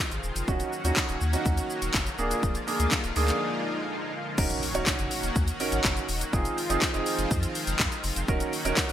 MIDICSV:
0, 0, Header, 1, 7, 480
1, 0, Start_track
1, 0, Tempo, 487805
1, 471, Time_signature, 4, 2, 24, 8
1, 8782, End_track
2, 0, Start_track
2, 0, Title_t, "Grand piano"
2, 0, Program_c, 0, 0
2, 470, Note_on_c, 0, 61, 88
2, 473, Note_on_c, 0, 63, 78
2, 475, Note_on_c, 0, 66, 96
2, 691, Note_off_c, 0, 61, 0
2, 692, Note_off_c, 0, 63, 0
2, 693, Note_off_c, 0, 66, 0
2, 830, Note_on_c, 0, 61, 82
2, 832, Note_on_c, 0, 63, 79
2, 835, Note_on_c, 0, 66, 94
2, 1124, Note_off_c, 0, 61, 0
2, 1125, Note_off_c, 0, 63, 0
2, 1126, Note_off_c, 0, 66, 0
2, 1309, Note_on_c, 0, 61, 85
2, 1311, Note_on_c, 0, 63, 79
2, 1314, Note_on_c, 0, 66, 94
2, 1897, Note_off_c, 0, 61, 0
2, 1898, Note_off_c, 0, 63, 0
2, 1899, Note_off_c, 0, 66, 0
2, 2149, Note_on_c, 0, 58, 91
2, 2151, Note_on_c, 0, 62, 85
2, 2154, Note_on_c, 0, 68, 98
2, 2534, Note_off_c, 0, 58, 0
2, 2535, Note_off_c, 0, 62, 0
2, 2537, Note_off_c, 0, 68, 0
2, 2628, Note_on_c, 0, 58, 87
2, 2630, Note_on_c, 0, 62, 80
2, 2633, Note_on_c, 0, 68, 92
2, 2923, Note_off_c, 0, 58, 0
2, 2924, Note_off_c, 0, 62, 0
2, 2926, Note_off_c, 0, 68, 0
2, 3108, Note_on_c, 0, 58, 86
2, 3112, Note_on_c, 0, 62, 82
2, 3113, Note_on_c, 0, 68, 102
2, 3696, Note_off_c, 0, 58, 0
2, 3698, Note_off_c, 0, 62, 0
2, 3699, Note_off_c, 0, 68, 0
2, 4308, Note_on_c, 0, 61, 90
2, 4309, Note_on_c, 0, 63, 77
2, 4311, Note_on_c, 0, 66, 82
2, 4312, Note_on_c, 0, 70, 97
2, 4530, Note_off_c, 0, 61, 0
2, 4530, Note_off_c, 0, 63, 0
2, 4531, Note_off_c, 0, 66, 0
2, 4532, Note_off_c, 0, 70, 0
2, 4668, Note_on_c, 0, 61, 85
2, 4670, Note_on_c, 0, 63, 82
2, 4671, Note_on_c, 0, 66, 79
2, 4673, Note_on_c, 0, 73, 98
2, 5183, Note_off_c, 0, 61, 0
2, 5184, Note_off_c, 0, 63, 0
2, 5185, Note_off_c, 0, 66, 0
2, 5186, Note_off_c, 0, 73, 0
2, 5510, Note_on_c, 0, 61, 86
2, 5511, Note_on_c, 0, 63, 82
2, 5513, Note_on_c, 0, 66, 84
2, 5515, Note_on_c, 0, 70, 100
2, 5951, Note_off_c, 0, 61, 0
2, 5951, Note_off_c, 0, 63, 0
2, 5952, Note_off_c, 0, 66, 0
2, 5953, Note_off_c, 0, 70, 0
2, 6229, Note_on_c, 0, 60, 88
2, 6231, Note_on_c, 0, 63, 81
2, 6232, Note_on_c, 0, 65, 79
2, 6233, Note_on_c, 0, 68, 99
2, 6450, Note_off_c, 0, 60, 0
2, 6451, Note_off_c, 0, 63, 0
2, 6452, Note_off_c, 0, 65, 0
2, 6452, Note_off_c, 0, 68, 0
2, 6590, Note_on_c, 0, 60, 91
2, 6591, Note_on_c, 0, 63, 80
2, 6593, Note_on_c, 0, 65, 80
2, 6595, Note_on_c, 0, 68, 93
2, 6737, Note_off_c, 0, 60, 0
2, 6738, Note_off_c, 0, 63, 0
2, 6739, Note_off_c, 0, 65, 0
2, 6740, Note_off_c, 0, 68, 0
2, 6830, Note_on_c, 0, 60, 86
2, 6832, Note_on_c, 0, 63, 80
2, 6833, Note_on_c, 0, 65, 81
2, 6835, Note_on_c, 0, 68, 97
2, 7417, Note_off_c, 0, 60, 0
2, 7418, Note_off_c, 0, 63, 0
2, 7419, Note_off_c, 0, 65, 0
2, 7420, Note_off_c, 0, 68, 0
2, 8151, Note_on_c, 0, 61, 91
2, 8153, Note_on_c, 0, 63, 84
2, 8154, Note_on_c, 0, 66, 82
2, 8156, Note_on_c, 0, 70, 102
2, 8371, Note_off_c, 0, 61, 0
2, 8372, Note_off_c, 0, 63, 0
2, 8373, Note_off_c, 0, 66, 0
2, 8374, Note_off_c, 0, 70, 0
2, 8510, Note_on_c, 0, 61, 84
2, 8512, Note_on_c, 0, 63, 80
2, 8513, Note_on_c, 0, 66, 79
2, 8515, Note_on_c, 0, 70, 98
2, 8782, Note_off_c, 0, 61, 0
2, 8782, Note_off_c, 0, 63, 0
2, 8782, Note_off_c, 0, 66, 0
2, 8782, Note_off_c, 0, 70, 0
2, 8782, End_track
3, 0, Start_track
3, 0, Title_t, "Supersaw synth"
3, 0, Program_c, 1, 81
3, 0, Note_on_c, 1, 51, 83
3, 0, Note_on_c, 1, 53, 74
3, 0, Note_on_c, 1, 56, 77
3, 0, Note_on_c, 1, 60, 73
3, 0, Note_on_c, 1, 65, 93
3, 452, Note_off_c, 1, 53, 0
3, 453, Note_off_c, 1, 56, 0
3, 453, Note_off_c, 1, 60, 0
3, 453, Note_off_c, 1, 65, 0
3, 471, Note_on_c, 1, 58, 78
3, 471, Note_on_c, 1, 61, 79
3, 471, Note_on_c, 1, 66, 97
3, 472, Note_on_c, 1, 54, 75
3, 2112, Note_off_c, 1, 51, 0
3, 2134, Note_off_c, 1, 61, 0
3, 2135, Note_off_c, 1, 54, 0
3, 2135, Note_off_c, 1, 66, 0
3, 2151, Note_on_c, 1, 53, 75
3, 2151, Note_on_c, 1, 65, 97
3, 2152, Note_on_c, 1, 50, 84
3, 2152, Note_on_c, 1, 56, 80
3, 4273, Note_off_c, 1, 58, 0
3, 4289, Note_off_c, 1, 53, 0
3, 4290, Note_off_c, 1, 50, 0
3, 4290, Note_off_c, 1, 56, 0
3, 4290, Note_off_c, 1, 65, 0
3, 4309, Note_on_c, 1, 54, 79
3, 4309, Note_on_c, 1, 58, 78
3, 4309, Note_on_c, 1, 66, 94
3, 4310, Note_on_c, 1, 51, 88
3, 4310, Note_on_c, 1, 61, 78
3, 6211, Note_off_c, 1, 54, 0
3, 6211, Note_off_c, 1, 58, 0
3, 6211, Note_off_c, 1, 61, 0
3, 6211, Note_off_c, 1, 66, 0
3, 6231, Note_on_c, 1, 53, 81
3, 6231, Note_on_c, 1, 56, 75
3, 6232, Note_on_c, 1, 60, 76
3, 6232, Note_on_c, 1, 65, 92
3, 8132, Note_off_c, 1, 53, 0
3, 8132, Note_off_c, 1, 56, 0
3, 8132, Note_off_c, 1, 60, 0
3, 8132, Note_off_c, 1, 65, 0
3, 8152, Note_on_c, 1, 54, 77
3, 8152, Note_on_c, 1, 61, 77
3, 8153, Note_on_c, 1, 58, 78
3, 8153, Note_on_c, 1, 66, 98
3, 8782, Note_off_c, 1, 51, 0
3, 8782, Note_off_c, 1, 54, 0
3, 8782, Note_off_c, 1, 58, 0
3, 8782, Note_off_c, 1, 61, 0
3, 8782, Note_off_c, 1, 66, 0
3, 8782, End_track
4, 0, Start_track
4, 0, Title_t, "Sub bass"
4, 0, Program_c, 2, 38
4, 111, Note_on_c, 2, 32, 89
4, 185, Note_off_c, 2, 32, 0
4, 232, Note_on_c, 2, 27, 96
4, 306, Note_off_c, 2, 27, 0
4, 351, Note_on_c, 2, 29, 96
4, 425, Note_off_c, 2, 29, 0
4, 472, Note_on_c, 2, 27, 113
4, 620, Note_off_c, 2, 27, 0
4, 831, Note_on_c, 2, 39, 105
4, 905, Note_off_c, 2, 39, 0
4, 1072, Note_on_c, 2, 27, 94
4, 1146, Note_off_c, 2, 27, 0
4, 1192, Note_on_c, 2, 39, 108
4, 1340, Note_off_c, 2, 39, 0
4, 1433, Note_on_c, 2, 39, 105
4, 1581, Note_off_c, 2, 39, 0
4, 1792, Note_on_c, 2, 27, 87
4, 1866, Note_off_c, 2, 27, 0
4, 1912, Note_on_c, 2, 30, 95
4, 2060, Note_off_c, 2, 30, 0
4, 2152, Note_on_c, 2, 26, 105
4, 2300, Note_off_c, 2, 26, 0
4, 2391, Note_on_c, 2, 26, 107
4, 2540, Note_off_c, 2, 26, 0
4, 2751, Note_on_c, 2, 38, 111
4, 2825, Note_off_c, 2, 38, 0
4, 2991, Note_on_c, 2, 26, 99
4, 3066, Note_off_c, 2, 26, 0
4, 3113, Note_on_c, 2, 38, 97
4, 3260, Note_off_c, 2, 38, 0
4, 4311, Note_on_c, 2, 27, 108
4, 4459, Note_off_c, 2, 27, 0
4, 4672, Note_on_c, 2, 27, 96
4, 4746, Note_off_c, 2, 27, 0
4, 4911, Note_on_c, 2, 30, 92
4, 4985, Note_off_c, 2, 30, 0
4, 5150, Note_on_c, 2, 27, 89
4, 5225, Note_off_c, 2, 27, 0
4, 5272, Note_on_c, 2, 39, 110
4, 5420, Note_off_c, 2, 39, 0
4, 5630, Note_on_c, 2, 32, 90
4, 5705, Note_off_c, 2, 32, 0
4, 5751, Note_on_c, 2, 30, 98
4, 5899, Note_off_c, 2, 30, 0
4, 5991, Note_on_c, 2, 27, 100
4, 6139, Note_off_c, 2, 27, 0
4, 6231, Note_on_c, 2, 29, 107
4, 6380, Note_off_c, 2, 29, 0
4, 6592, Note_on_c, 2, 29, 102
4, 6666, Note_off_c, 2, 29, 0
4, 6831, Note_on_c, 2, 29, 90
4, 6905, Note_off_c, 2, 29, 0
4, 7070, Note_on_c, 2, 29, 91
4, 7145, Note_off_c, 2, 29, 0
4, 7193, Note_on_c, 2, 41, 99
4, 7341, Note_off_c, 2, 41, 0
4, 7550, Note_on_c, 2, 29, 96
4, 7625, Note_off_c, 2, 29, 0
4, 7672, Note_on_c, 2, 41, 109
4, 7746, Note_off_c, 2, 41, 0
4, 7911, Note_on_c, 2, 29, 106
4, 7985, Note_off_c, 2, 29, 0
4, 8032, Note_on_c, 2, 29, 94
4, 8106, Note_off_c, 2, 29, 0
4, 8151, Note_on_c, 2, 27, 111
4, 8300, Note_off_c, 2, 27, 0
4, 8512, Note_on_c, 2, 27, 104
4, 8586, Note_off_c, 2, 27, 0
4, 8751, Note_on_c, 2, 30, 89
4, 8782, Note_off_c, 2, 30, 0
4, 8782, End_track
5, 0, Start_track
5, 0, Title_t, "Impact"
5, 0, Program_c, 3, 103
5, 4311, Note_on_c, 3, 60, 85
5, 6231, Note_off_c, 3, 60, 0
5, 8782, End_track
6, 0, Start_track
6, 0, Title_t, "Swell"
6, 0, Program_c, 4, 103
6, 2392, Note_on_c, 4, 60, 83
6, 4311, Note_off_c, 4, 60, 0
6, 8782, End_track
7, 0, Start_track
7, 0, Title_t, "Drums"
7, 113, Note_on_c, 9, 42, 48
7, 113, Note_on_c, 9, 82, 52
7, 212, Note_off_c, 9, 42, 0
7, 212, Note_off_c, 9, 82, 0
7, 230, Note_on_c, 9, 82, 54
7, 328, Note_off_c, 9, 82, 0
7, 354, Note_on_c, 9, 42, 73
7, 354, Note_on_c, 9, 82, 75
7, 453, Note_off_c, 9, 42, 0
7, 453, Note_off_c, 9, 82, 0
7, 472, Note_on_c, 9, 36, 111
7, 472, Note_on_c, 9, 82, 60
7, 570, Note_off_c, 9, 36, 0
7, 571, Note_off_c, 9, 82, 0
7, 589, Note_on_c, 9, 42, 50
7, 589, Note_on_c, 9, 82, 50
7, 687, Note_off_c, 9, 42, 0
7, 687, Note_off_c, 9, 82, 0
7, 716, Note_on_c, 9, 82, 49
7, 814, Note_off_c, 9, 82, 0
7, 834, Note_on_c, 9, 42, 74
7, 834, Note_on_c, 9, 82, 72
7, 932, Note_off_c, 9, 42, 0
7, 932, Note_off_c, 9, 82, 0
7, 947, Note_on_c, 9, 38, 91
7, 950, Note_on_c, 9, 39, 111
7, 951, Note_on_c, 9, 82, 77
7, 952, Note_on_c, 9, 36, 108
7, 1045, Note_off_c, 9, 38, 0
7, 1048, Note_off_c, 9, 39, 0
7, 1049, Note_off_c, 9, 82, 0
7, 1050, Note_off_c, 9, 36, 0
7, 1070, Note_on_c, 9, 42, 43
7, 1070, Note_on_c, 9, 82, 44
7, 1169, Note_off_c, 9, 42, 0
7, 1169, Note_off_c, 9, 82, 0
7, 1190, Note_on_c, 9, 82, 57
7, 1288, Note_off_c, 9, 82, 0
7, 1312, Note_on_c, 9, 42, 67
7, 1312, Note_on_c, 9, 82, 64
7, 1410, Note_off_c, 9, 42, 0
7, 1410, Note_off_c, 9, 82, 0
7, 1433, Note_on_c, 9, 36, 117
7, 1433, Note_on_c, 9, 82, 82
7, 1532, Note_off_c, 9, 36, 0
7, 1532, Note_off_c, 9, 82, 0
7, 1550, Note_on_c, 9, 42, 61
7, 1550, Note_on_c, 9, 82, 65
7, 1648, Note_off_c, 9, 42, 0
7, 1648, Note_off_c, 9, 82, 0
7, 1672, Note_on_c, 9, 82, 55
7, 1771, Note_off_c, 9, 82, 0
7, 1792, Note_on_c, 9, 42, 66
7, 1792, Note_on_c, 9, 82, 63
7, 1890, Note_off_c, 9, 42, 0
7, 1890, Note_off_c, 9, 82, 0
7, 1909, Note_on_c, 9, 38, 89
7, 1912, Note_on_c, 9, 36, 118
7, 1912, Note_on_c, 9, 39, 106
7, 1914, Note_on_c, 9, 82, 75
7, 2007, Note_off_c, 9, 38, 0
7, 2010, Note_off_c, 9, 39, 0
7, 2011, Note_off_c, 9, 36, 0
7, 2012, Note_off_c, 9, 82, 0
7, 2032, Note_on_c, 9, 42, 48
7, 2032, Note_on_c, 9, 82, 52
7, 2131, Note_off_c, 9, 42, 0
7, 2131, Note_off_c, 9, 82, 0
7, 2150, Note_on_c, 9, 82, 58
7, 2248, Note_off_c, 9, 82, 0
7, 2274, Note_on_c, 9, 42, 75
7, 2274, Note_on_c, 9, 82, 76
7, 2372, Note_off_c, 9, 42, 0
7, 2372, Note_off_c, 9, 82, 0
7, 2391, Note_on_c, 9, 36, 117
7, 2391, Note_on_c, 9, 82, 63
7, 2490, Note_off_c, 9, 36, 0
7, 2490, Note_off_c, 9, 82, 0
7, 2509, Note_on_c, 9, 42, 49
7, 2509, Note_on_c, 9, 82, 49
7, 2607, Note_off_c, 9, 42, 0
7, 2607, Note_off_c, 9, 82, 0
7, 2635, Note_on_c, 9, 46, 69
7, 2635, Note_on_c, 9, 82, 51
7, 2733, Note_off_c, 9, 46, 0
7, 2733, Note_off_c, 9, 82, 0
7, 2753, Note_on_c, 9, 42, 72
7, 2753, Note_on_c, 9, 82, 74
7, 2851, Note_off_c, 9, 42, 0
7, 2851, Note_off_c, 9, 82, 0
7, 2866, Note_on_c, 9, 38, 88
7, 2869, Note_on_c, 9, 39, 114
7, 2870, Note_on_c, 9, 82, 76
7, 2871, Note_on_c, 9, 36, 109
7, 2964, Note_off_c, 9, 38, 0
7, 2967, Note_off_c, 9, 39, 0
7, 2968, Note_off_c, 9, 82, 0
7, 2970, Note_off_c, 9, 36, 0
7, 2990, Note_on_c, 9, 42, 45
7, 2990, Note_on_c, 9, 82, 46
7, 3088, Note_off_c, 9, 42, 0
7, 3088, Note_off_c, 9, 82, 0
7, 3109, Note_on_c, 9, 46, 82
7, 3109, Note_on_c, 9, 82, 56
7, 3208, Note_off_c, 9, 46, 0
7, 3208, Note_off_c, 9, 82, 0
7, 3231, Note_on_c, 9, 39, 60
7, 3231, Note_on_c, 9, 42, 64
7, 3231, Note_on_c, 9, 82, 66
7, 3329, Note_off_c, 9, 42, 0
7, 3329, Note_off_c, 9, 82, 0
7, 3330, Note_off_c, 9, 39, 0
7, 4311, Note_on_c, 9, 36, 119
7, 4311, Note_on_c, 9, 49, 99
7, 4311, Note_on_c, 9, 82, 64
7, 4409, Note_off_c, 9, 36, 0
7, 4409, Note_off_c, 9, 49, 0
7, 4409, Note_off_c, 9, 82, 0
7, 4428, Note_on_c, 9, 42, 49
7, 4428, Note_on_c, 9, 82, 52
7, 4526, Note_off_c, 9, 42, 0
7, 4526, Note_off_c, 9, 82, 0
7, 4554, Note_on_c, 9, 46, 72
7, 4554, Note_on_c, 9, 82, 50
7, 4652, Note_off_c, 9, 46, 0
7, 4652, Note_off_c, 9, 82, 0
7, 4673, Note_on_c, 9, 42, 76
7, 4673, Note_on_c, 9, 82, 73
7, 4772, Note_off_c, 9, 42, 0
7, 4772, Note_off_c, 9, 82, 0
7, 4786, Note_on_c, 9, 38, 91
7, 4789, Note_on_c, 9, 39, 115
7, 4790, Note_on_c, 9, 82, 77
7, 4791, Note_on_c, 9, 36, 112
7, 4884, Note_off_c, 9, 38, 0
7, 4887, Note_off_c, 9, 39, 0
7, 4888, Note_off_c, 9, 82, 0
7, 4889, Note_off_c, 9, 36, 0
7, 4909, Note_on_c, 9, 42, 48
7, 4909, Note_on_c, 9, 82, 47
7, 5007, Note_off_c, 9, 42, 0
7, 5007, Note_off_c, 9, 82, 0
7, 5028, Note_on_c, 9, 46, 81
7, 5028, Note_on_c, 9, 82, 58
7, 5126, Note_off_c, 9, 46, 0
7, 5126, Note_off_c, 9, 82, 0
7, 5150, Note_on_c, 9, 42, 65
7, 5150, Note_on_c, 9, 82, 67
7, 5248, Note_off_c, 9, 42, 0
7, 5248, Note_off_c, 9, 82, 0
7, 5272, Note_on_c, 9, 36, 126
7, 5272, Note_on_c, 9, 82, 88
7, 5370, Note_off_c, 9, 82, 0
7, 5371, Note_off_c, 9, 36, 0
7, 5389, Note_on_c, 9, 42, 65
7, 5389, Note_on_c, 9, 82, 63
7, 5487, Note_off_c, 9, 42, 0
7, 5487, Note_off_c, 9, 82, 0
7, 5511, Note_on_c, 9, 46, 83
7, 5511, Note_on_c, 9, 82, 57
7, 5609, Note_off_c, 9, 46, 0
7, 5609, Note_off_c, 9, 82, 0
7, 5630, Note_on_c, 9, 42, 66
7, 5630, Note_on_c, 9, 82, 68
7, 5728, Note_off_c, 9, 42, 0
7, 5728, Note_off_c, 9, 82, 0
7, 5748, Note_on_c, 9, 38, 90
7, 5751, Note_on_c, 9, 36, 120
7, 5751, Note_on_c, 9, 39, 112
7, 5753, Note_on_c, 9, 82, 77
7, 5846, Note_off_c, 9, 38, 0
7, 5849, Note_off_c, 9, 39, 0
7, 5850, Note_off_c, 9, 36, 0
7, 5851, Note_off_c, 9, 82, 0
7, 5872, Note_on_c, 9, 42, 50
7, 5872, Note_on_c, 9, 82, 49
7, 5970, Note_off_c, 9, 42, 0
7, 5970, Note_off_c, 9, 82, 0
7, 5989, Note_on_c, 9, 46, 80
7, 5989, Note_on_c, 9, 82, 54
7, 6087, Note_off_c, 9, 46, 0
7, 6087, Note_off_c, 9, 82, 0
7, 6113, Note_on_c, 9, 42, 75
7, 6113, Note_on_c, 9, 82, 77
7, 6212, Note_off_c, 9, 42, 0
7, 6212, Note_off_c, 9, 82, 0
7, 6231, Note_on_c, 9, 36, 120
7, 6231, Note_on_c, 9, 82, 64
7, 6329, Note_off_c, 9, 82, 0
7, 6330, Note_off_c, 9, 36, 0
7, 6348, Note_on_c, 9, 42, 50
7, 6348, Note_on_c, 9, 82, 50
7, 6447, Note_off_c, 9, 42, 0
7, 6447, Note_off_c, 9, 82, 0
7, 6474, Note_on_c, 9, 46, 73
7, 6474, Note_on_c, 9, 82, 51
7, 6573, Note_off_c, 9, 46, 0
7, 6573, Note_off_c, 9, 82, 0
7, 6593, Note_on_c, 9, 42, 72
7, 6593, Note_on_c, 9, 82, 73
7, 6692, Note_off_c, 9, 42, 0
7, 6692, Note_off_c, 9, 82, 0
7, 6706, Note_on_c, 9, 38, 90
7, 6709, Note_on_c, 9, 39, 117
7, 6710, Note_on_c, 9, 82, 75
7, 6711, Note_on_c, 9, 36, 105
7, 6805, Note_off_c, 9, 38, 0
7, 6808, Note_off_c, 9, 39, 0
7, 6808, Note_off_c, 9, 82, 0
7, 6810, Note_off_c, 9, 36, 0
7, 6830, Note_on_c, 9, 42, 48
7, 6830, Note_on_c, 9, 82, 47
7, 6928, Note_off_c, 9, 42, 0
7, 6928, Note_off_c, 9, 82, 0
7, 6949, Note_on_c, 9, 46, 81
7, 6949, Note_on_c, 9, 82, 59
7, 7047, Note_off_c, 9, 46, 0
7, 7047, Note_off_c, 9, 82, 0
7, 7070, Note_on_c, 9, 42, 65
7, 7070, Note_on_c, 9, 82, 68
7, 7169, Note_off_c, 9, 42, 0
7, 7169, Note_off_c, 9, 82, 0
7, 7192, Note_on_c, 9, 82, 84
7, 7193, Note_on_c, 9, 36, 122
7, 7291, Note_off_c, 9, 36, 0
7, 7291, Note_off_c, 9, 82, 0
7, 7310, Note_on_c, 9, 42, 63
7, 7310, Note_on_c, 9, 82, 63
7, 7408, Note_off_c, 9, 42, 0
7, 7408, Note_off_c, 9, 82, 0
7, 7431, Note_on_c, 9, 46, 76
7, 7431, Note_on_c, 9, 82, 58
7, 7529, Note_off_c, 9, 46, 0
7, 7529, Note_off_c, 9, 82, 0
7, 7550, Note_on_c, 9, 42, 69
7, 7550, Note_on_c, 9, 82, 68
7, 7649, Note_off_c, 9, 42, 0
7, 7649, Note_off_c, 9, 82, 0
7, 7668, Note_on_c, 9, 38, 89
7, 7671, Note_on_c, 9, 39, 119
7, 7672, Note_on_c, 9, 36, 123
7, 7673, Note_on_c, 9, 82, 80
7, 7766, Note_off_c, 9, 38, 0
7, 7769, Note_off_c, 9, 39, 0
7, 7770, Note_off_c, 9, 36, 0
7, 7771, Note_off_c, 9, 82, 0
7, 7792, Note_on_c, 9, 42, 51
7, 7792, Note_on_c, 9, 82, 53
7, 7891, Note_off_c, 9, 42, 0
7, 7891, Note_off_c, 9, 82, 0
7, 7909, Note_on_c, 9, 46, 75
7, 7909, Note_on_c, 9, 82, 54
7, 8007, Note_off_c, 9, 46, 0
7, 8007, Note_off_c, 9, 82, 0
7, 8033, Note_on_c, 9, 42, 80
7, 8033, Note_on_c, 9, 82, 76
7, 8132, Note_off_c, 9, 42, 0
7, 8132, Note_off_c, 9, 82, 0
7, 8151, Note_on_c, 9, 36, 121
7, 8151, Note_on_c, 9, 82, 62
7, 8249, Note_off_c, 9, 82, 0
7, 8250, Note_off_c, 9, 36, 0
7, 8268, Note_on_c, 9, 42, 52
7, 8268, Note_on_c, 9, 82, 52
7, 8367, Note_off_c, 9, 42, 0
7, 8367, Note_off_c, 9, 82, 0
7, 8394, Note_on_c, 9, 46, 68
7, 8394, Note_on_c, 9, 82, 51
7, 8492, Note_off_c, 9, 46, 0
7, 8492, Note_off_c, 9, 82, 0
7, 8514, Note_on_c, 9, 42, 73
7, 8514, Note_on_c, 9, 82, 73
7, 8612, Note_off_c, 9, 42, 0
7, 8612, Note_off_c, 9, 82, 0
7, 8627, Note_on_c, 9, 38, 92
7, 8630, Note_on_c, 9, 39, 110
7, 8631, Note_on_c, 9, 82, 80
7, 8632, Note_on_c, 9, 36, 107
7, 8725, Note_off_c, 9, 38, 0
7, 8728, Note_off_c, 9, 39, 0
7, 8729, Note_off_c, 9, 82, 0
7, 8730, Note_off_c, 9, 36, 0
7, 8750, Note_on_c, 9, 42, 45
7, 8750, Note_on_c, 9, 82, 48
7, 8782, Note_off_c, 9, 42, 0
7, 8782, Note_off_c, 9, 82, 0
7, 8782, End_track
0, 0, End_of_file